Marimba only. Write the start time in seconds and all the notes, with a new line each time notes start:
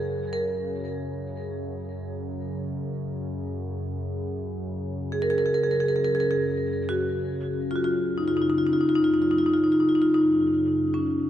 Already playing: G#4
0.33 A#4
5.12 G#4
5.22 A#4
5.30 G#4
5.38 A#4
5.46 G#4
5.54 A#4
5.63 G#4
5.71 A#4
5.80 G#4
5.88 A#4
5.96 G#4
6.05 A#4
6.15 G#4
6.20 A#4
6.31 G#4
6.89 F#4
7.71 F4
7.76 F#4
7.84 F4
8.18 D#4
8.28 F4
8.37 D#4
8.42 F4
8.50 D#4
8.58 F4
8.67 D#4
8.73 F4
8.81 D#4
8.89 F4
8.95 D#4
9.04 F4
9.14 D#4
9.22 F4
9.31 D#4
9.38 F4
9.46 D#4
9.54 F4
9.64 D#4
9.72 F4
9.80 D#4
9.89 F4
9.95 D#4
10.02 F4
10.14 D#4
10.94 C#4